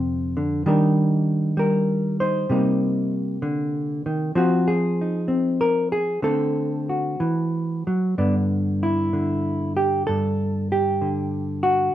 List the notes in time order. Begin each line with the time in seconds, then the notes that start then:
Already playing: F2 C3 D3 G#3 C4 F4
0.37 D3
0.66 D#3 G3 D4 D#4 A#4
1.57 G3 A#4
2.20 D#4 C5
2.50 C3 G3 A#3 D#4
3.42 D3
4.06 D#3
4.35 F3 C4 F#4
4.68 G#4
5.01 D#4
5.28 C4
5.61 A#4
5.92 G#4
6.22 D3 A3 C4 A4
6.89 F#4
7.20 E3
7.87 F#3
8.18 G2 D3 B3 D4
8.83 E4
9.13 D3
9.77 G4
10.07 G2 A4
10.72 G4
11.02 D3
11.63 F#4